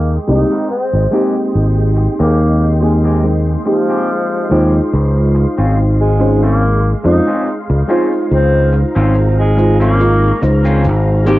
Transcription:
0.00 0.17 D#2 loud
0.00 11.23 G#3 medium
0.00 0.17 A#3 medium
0.00 4.89 D#5 medium
0.00 4.89 G5 medium
0.00 8.27 C6 medium
0.27 0.43 C2 medium
0.27 0.50 G#3 medium
0.27 0.51 A#3 medium
0.27 0.51 C4 medium
0.27 0.51 D#4 medium
0.27 0.70 D#4 medium
0.27 0.51 G4 medium
0.27 muted clean electric guitar stroke medium
0.27 cabasa medium
0.50 0.70 G#3 medium
0.50 0.71 C4 medium
0.50 0.71 A#4 medium
0.50 cabasa soft
0.70 1.22 C4 medium
0.70 cabasa soft
0.93 1.06 G#1 medium
1.11 2.76 G#3 medium
1.11 1.35 G#3 medium
1.11 2.77 A#3 medium
1.11 1.35 C4 medium
1.11 2.77 C4 medium
1.11 2.77 D#4 medium
1.11 1.36 G4 medium
1.11 2.78 G4 loud
1.11 cabasa medium
1.36 cabasa soft
1.55 2.07 G#1 medium
1.55 cabasa soft
1.97 muted clean electric guitar stroke medium
1.97 cabasa medium
2.19 3.55 D#2 loud
2.19 2.39 G#3 medium
2.19 2.70 A#3 medium
2.19 2.40 C4 medium
2.19 2.40 G4 medium
2.19 cabasa soft
2.39 cabasa soft
2.81 3.19 G#3 medium
2.81 2.97 G#3 medium
2.81 3.19 A#3 medium
2.81 3.19 C4 medium
2.81 3.19 D#4 medium
2.81 3.20 G4 medium
2.81 muted clean electric guitar stroke medium
2.81 cabasa medium
3.04 3.24 G#3 medium
3.04 3.17 G#3 medium
3.04 3.24 C4 medium
3.04 3.24 G4 medium
3.04 cabasa medium
3.23 3.58 G#3 medium
3.23 3.58 A#3 medium
3.23 3.58 C4 medium
3.23 3.58 D#4 medium
3.23 cabasa soft
3.65 4.85 F3 medium
3.65 4.46 G#3 medium
3.65 4.46 A#3 medium
3.65 4.46 C4 medium
3.65 4.46 D#4 medium
3.65 4.47 G4 medium
3.65 muted clean electric guitar stroke medium
3.65 cabasa medium
3.89 4.08 G#3 medium
3.89 4.09 C4 medium
3.89 4.09 G4 medium
3.89 cabasa medium
4.09 cabasa soft
4.49 4.79 D#2 medium
4.49 6.14 G#3 medium
4.49 4.73 G#3 medium
4.49 4.74 C4 medium
4.49 6.15 D#4 medium
4.49 6.16 F4 medium
4.49 4.74 G4 medium
4.49 6.16 C5 medium
4.49 cabasa medium
4.73 cabasa soft
4.93 5.45 C#2 medium
4.93 11.23 F5 medium
4.93 cabasa soft
5.35 muted clean electric guitar stroke medium
5.35 cabasa medium
5.58 6.93 G#1 medium
5.58 5.77 C4 medium
5.58 5.78 C#4 medium
5.58 5.78 F4 medium
5.58 cabasa soft
5.78 cabasa soft
6.00 6.38 G#3 medium
6.19 6.42 G#3 medium
6.19 6.42 C#4 medium
6.19 6.42 D#4 medium
6.19 6.43 F4 medium
6.19 6.43 C5 medium
6.19 muted clean electric guitar stroke medium
6.19 cabasa medium
6.42 6.93 A#3 medium
6.42 6.62 C4 medium
6.42 6.62 C#4 medium
6.42 6.63 F4 medium
6.42 cabasa soft
6.62 cabasa soft
7.04 7.19 F2 medium
7.04 7.27 G#3 medium
7.04 7.27 C#4 medium
7.04 7.56 D#4 medium
7.04 7.27 D#4 medium
7.04 7.27 F4 medium
7.04 7.27 C5 medium
7.04 muted clean electric guitar stroke medium
7.04 cabasa medium
7.27 7.46 C4 medium
7.27 7.47 C#4 medium
7.27 7.47 F4 medium
7.27 cabasa soft
7.47 cabasa soft
7.69 7.82 C#2 medium
7.87 9.53 G#3 medium
7.87 8.11 C4 medium
7.87 8.12 C#4 medium
7.87 9.53 D#4 medium
7.87 8.12 F4 medium
7.87 9.54 F4 medium
7.87 9.54 C5 loud
7.87 cabasa medium
8.12 cabasa soft
8.31 8.83 C#2 medium
8.31 8.83 C4 medium
8.31 11.24 A#5 medium
8.31 cabasa soft
8.73 muted clean electric guitar stroke medium
8.73 cabasa medium
8.96 10.31 G#1 loud
8.96 9.15 C4 medium
8.96 9.16 C#4 medium
8.96 9.16 F4 medium
8.96 cabasa soft
9.14 cabasa soft
9.39 9.76 G#3 medium
9.57 9.95 G#3 medium
9.57 9.96 D#4 medium
9.57 9.96 F4 medium
9.57 9.96 C5 medium
9.57 muted clean electric guitar stroke medium
9.57 cabasa medium
9.80 10.42 A#3 medium
9.80 10.00 C4 medium
9.80 10.00 C#4 medium
9.80 10.00 F4 medium
9.80 cabasa soft
9.99 10.34 G#3 medium
9.99 10.34 D#4 medium
9.99 10.34 F4 medium
9.99 10.35 C#6 medium
9.99 cabasa soft
10.42 10.86 C#2 medium
10.42 11.22 G#3 medium
10.42 11.22 D#4 medium
10.42 11.22 F4 medium
10.42 11.23 C5 medium
10.42 muted clean electric guitar stroke medium
10.42 cabasa medium
10.65 10.84 C4 medium
10.65 10.85 C#4 medium
10.65 10.85 F4 medium
10.65 cabasa medium
10.85 11.39 G#1 medium
10.85 cabasa soft
11.25 11.39 G#3 medium
11.25 11.39 A#3 medium
11.25 11.39 C4 medium
11.25 11.39 D#4 medium
11.25 11.39 G4 loud
11.25 11.39 D#5 medium
11.25 11.39 G5 medium
11.25 11.39 C6 medium
11.25 cabasa medium

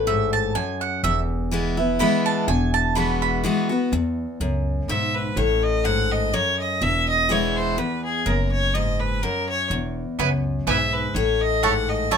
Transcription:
0.00 0.55 A1 loud
0.00 0.51 A2 medium
0.07 0.53 G#2 medium
0.07 0.32 E5 medium
0.33 0.55 A5 loud
0.55 1.01 F#2 medium
0.55 0.80 G#5 medium
0.81 1.03 F#5 medium
1.03 2.00 E1 medium
1.03 1.96 E2 loud
1.03 1.19 E5 loud
1.51 1.76 E3 medium
1.51 1.77 G#3 medium
1.51 1.77 B3 loud
1.51 1.76 E4 loud
1.77 2.00 B3 medium
1.77 1.99 E4 medium
1.99 2.45 E3 medium
1.99 2.46 G#3 loud
1.99 2.46 B3 loud
1.99 2.47 E4 loud
1.99 2.25 B5 medium
2.26 2.47 A5 medium
2.48 3.44 E1 loud
2.48 3.40 E2 medium
2.48 2.73 G#5 medium
2.74 2.95 A5 loud
2.95 3.42 E3 medium
2.95 3.42 G#3 medium
2.95 3.42 B3 loud
2.95 3.43 F#4 loud
2.95 3.21 B5 medium
3.22 3.77 B5 loud
3.44 3.69 E3 medium
3.44 3.69 G#3 loud
3.44 3.70 B3 medium
3.44 3.68 F#4 loud
3.69 3.92 B3 medium
3.69 3.91 F#4 medium
3.92 4.24 E2 loud
3.92 4.40 E2 medium
4.40 4.81 C#2 medium
4.40 4.87 F#2 medium
4.88 5.29 B1 medium
4.88 5.35 G#2 medium
4.88 5.16 E5 medium
5.15 5.39 B4 medium
5.36 6.33 A1 loud
5.36 6.29 A2 medium
5.36 5.65 C#5 medium
5.63 5.86 D#5 medium
5.85 6.31 G#2 medium
5.85 6.13 F#5 loud
6.11 6.35 D#5 medium
6.33 6.79 F#2 medium
6.33 6.59 C#5 loud
6.59 6.84 D#5 medium
6.81 7.78 E1 medium
6.81 7.73 E2 loud
6.81 7.08 E5 loud
7.08 7.33 D#5 loud
7.29 7.75 E3 medium
7.29 7.76 G#3 medium
7.29 7.76 B3 medium
7.29 7.77 E4 medium
7.29 7.57 C#5 medium
7.56 7.80 C5 medium
7.78 8.24 E2 medium
7.78 8.04 B4 medium
8.04 8.28 G#4 medium
8.26 9.22 F#1 medium
8.26 8.74 F#2 medium
8.26 8.51 A#4 medium
8.52 8.75 C#5 loud
8.74 9.20 G#2 medium
8.74 9.01 D#5 medium
9.00 9.24 B4 medium
9.23 9.69 F#2 medium
9.23 9.48 A#4 medium
9.49 9.69 C#5 loud
9.70 10.02 E1 medium
9.70 10.19 E2 medium
10.19 10.60 C#2 medium
10.19 10.65 F#2 medium
10.19 10.28 B3 medium
10.19 10.29 E4 medium
10.19 10.29 B4 loud
10.19 10.29 G#5 medium
10.67 11.08 B1 medium
10.67 11.13 G#2 medium
10.67 10.76 B3 medium
10.67 10.77 E4 medium
10.67 10.77 B4 medium
10.67 10.95 E5 medium
10.67 10.77 G#5 medium
10.93 11.16 B4 medium
11.14 12.11 A1 loud
11.14 12.07 A2 medium
11.14 11.42 C#5 medium
11.41 11.65 D#5 loud
11.63 12.09 G#2 medium
11.63 11.73 A3 medium
11.63 11.73 E4 medium
11.63 11.73 C#5 medium
11.63 11.90 F#5 medium
11.63 11.73 A5 medium
11.89 12.14 D#5 medium
12.11 12.17 F#2 medium
12.11 12.17 A3 medium
12.11 12.17 E4 medium
12.11 12.17 C#5 medium
12.11 12.17 A5 loud

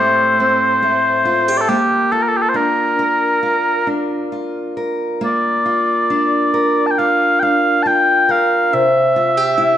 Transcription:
0.00 1.68 A2 medium
0.00 0.81 A3 medium
0.00 0.39 C4 soft
0.00 1.25 G4 soft
0.00 1.57 C5 medium
0.40 1.77 C4 soft
0.83 1.77 A3 soft
1.25 1.48 F4 soft
1.48 1.77 G4 soft
1.57 1.69 A4 soft
1.57 1.61 D5 soft
1.69 5.20 A#3 medium
1.69 2.12 G4 medium
2.12 3.42 F4 soft
2.12 2.22 A4 medium
2.22 2.28 A#4 soft
2.28 2.37 A4 medium
2.37 2.42 G4 soft
2.42 2.49 A4 medium
2.49 2.56 C5 soft
2.54 3.86 D4 soft
2.54 3.88 A#4 soft
2.99 4.76 A#4 soft
3.43 4.31 F4 soft
3.87 6.09 D4 soft
4.32 5.64 F4 soft
4.77 6.53 A#4 soft
5.21 8.73 A#3 medium
5.21 6.86 D5 soft
5.66 6.98 F4 soft
6.10 7.41 D4 soft
6.54 8.28 A#4 soft
6.86 6.91 A5 soft
6.91 6.98 G5 soft
6.98 7.85 F4 soft
6.98 7.40 F5 medium
7.40 8.82 D4 soft
7.40 7.83 F5 medium
7.40 7.43 G5 medium
7.83 8.81 F4 soft
7.83 7.87 A5 medium
7.87 8.31 G5 medium
8.29 8.81 A#4 soft
8.29 8.74 F5 medium
8.73 9.78 C3 medium
8.73 9.78 E5 medium
9.16 9.37 F4 soft
9.37 9.78 G4 soft
9.58 9.78 E4 soft

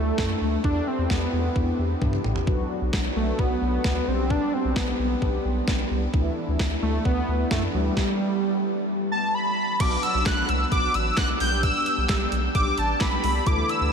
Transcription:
0.00 0.11 D2 loud
0.00 0.60 A3 medium
0.00 0.60 D4 medium
0.00 0.60 E4 medium
0.00 0.60 A4 medium
0.18 0.34 F#2 medium
0.18 kick loud
0.18 snare loud
0.41 0.57 D2 medium
0.64 0.80 E2 loud
0.64 2.44 B3 medium
0.64 2.44 D4 medium
0.64 0.89 D4 loud
0.64 2.44 E4 medium
0.64 2.44 G4 medium
0.64 kick loud
0.87 1.12 C4 loud
0.98 1.06 E2 loud
1.10 1.26 E2 medium
1.10 1.79 B3 medium
1.10 kick loud
1.10 snare loud
1.33 1.49 E2 loud
1.56 1.72 E2 loud
1.56 kick loud
1.79 1.95 E2 medium
2.02 2.18 G2 loud
2.02 kick loud
2.02 high tom medium
2.13 mid tom medium
2.24 2.40 A1 medium
2.24 mid tom medium
2.36 floor tom medium
2.47 2.63 B1 loud
2.47 4.04 F#3 medium
2.47 4.04 B3 medium
2.47 4.04 D4 medium
2.47 4.04 F#4 medium
2.47 kick loud
2.81 2.90 B1 loud
2.93 3.09 B1 loud
2.93 kick loud
2.93 snare loud
3.16 3.32 B1 medium
3.16 3.41 A3 medium
3.39 3.55 B1 loud
3.39 4.09 B3 loud
3.39 kick loud
3.62 3.78 B1 loud
3.84 4.01 D2 medium
3.84 kick loud
3.84 snare loud
4.08 4.40 B1 medium
4.08 6.10 G3 medium
4.08 6.10 B3 medium
4.08 4.32 C4 loud
4.08 6.10 D4 medium
4.08 6.10 G4 medium
4.30 4.55 D4 loud
4.30 kick loud
4.53 4.78 C4 loud
4.65 4.73 B1 loud
4.76 4.92 B1 loud
4.76 5.45 B3 medium
4.76 kick loud
4.76 snare loud
4.99 5.15 B1 loud
5.22 5.38 B1 loud
5.22 kick loud
5.45 5.61 B1 loud
5.68 5.84 B1 loud
5.68 kick loud
5.68 snare loud
5.91 6.07 C2 medium
6.14 6.30 D2 loud
6.14 7.93 E3 medium
6.14 7.93 A3 medium
6.14 7.93 D4 medium
6.14 7.93 E4 medium
6.14 kick loud
6.48 6.56 D2 loud
6.59 6.76 D2 loud
6.59 kick loud
6.59 snare loud
6.82 6.98 D2 loud
6.82 7.04 A3 loud
7.05 7.21 D2 loud
7.05 7.48 B3 loud
7.05 kick loud
7.28 7.44 D2 loud
7.51 7.67 F#2 medium
7.51 7.62 A3 loud
7.51 kick loud
7.51 snare loud
7.74 7.90 D2 medium
7.74 9.07 G3 loud
7.97 kick loud
7.97 snare medium
9.12 9.36 A5 medium
9.34 9.82 B5 medium
9.80 9.96 B1 loud
9.80 11.37 F#3 medium
9.80 11.37 B3 medium
9.80 11.37 D4 medium
9.80 11.37 F#4 medium
9.80 10.03 D6 loud
9.80 kick loud
9.80 closed hi-hat medium
9.80 crash loud
10.03 10.28 E6 loud
10.03 closed hi-hat medium
10.14 10.22 B1 loud
10.26 10.42 B1 loud
10.26 10.50 F#6 loud
10.26 kick loud
10.26 snare loud
10.26 clap medium
10.26 closed hi-hat medium
10.49 10.65 C2 loud
10.49 10.71 E6 loud
10.49 closed hi-hat medium
10.72 10.88 B1 loud
10.72 10.96 D6 loud
10.72 kick loud
10.72 closed hi-hat medium
10.94 11.11 A1 medium
10.94 11.17 E6 loud
10.94 closed hi-hat medium
11.17 11.34 B1 loud
11.17 11.28 F#6 loud
11.17 kick loud
11.17 snare loud
11.17 clap loud
11.17 closed hi-hat medium
11.40 11.72 B1 medium
11.40 13.43 G3 medium
11.40 13.42 B3 medium
11.40 13.42 D4 medium
11.40 13.42 G4 medium
11.40 11.62 G6 loud
11.40 open hi-hat medium
11.63 12.28 E6 loud
11.63 kick loud
11.63 closed hi-hat medium
11.86 closed hi-hat medium
11.98 12.06 B1 loud
12.09 12.25 B1 loud
12.09 kick loud
12.09 snare loud
12.09 clap loud
12.09 closed hi-hat medium
12.32 12.48 B1 medium
12.32 closed hi-hat medium
12.55 12.71 B1 loud
12.55 12.79 D6 loud
12.55 kick loud
12.55 closed hi-hat medium
12.78 12.94 A1 medium
12.78 13.02 A5 medium
12.78 closed hi-hat medium
13.01 13.17 B1 loud
13.01 13.48 B5 loud
13.01 kick loud
13.01 snare loud
13.01 clap loud
13.01 closed hi-hat medium
13.24 13.40 C2 medium
13.24 open hi-hat medium
13.46 13.63 D2 loud
13.46 13.93 D3 medium
13.46 13.93 E3 medium
13.46 13.93 A3 medium
13.46 13.93 E4 medium
13.46 13.93 A4 medium
13.46 13.71 D6 loud
13.46 kick loud
13.46 closed hi-hat medium
13.69 13.92 E6 loud
13.69 closed hi-hat medium
13.81 13.89 D2 loud

